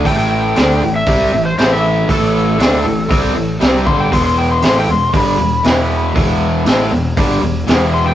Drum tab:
HH |o-o-o-o-|o-o-o-o-|o-o-o-o-|o-o-o-o-|
SD |--o---o-|--o---o-|--o---o-|--o---o-|
BD |o---o---|o---o--o|o---o---|o---o---|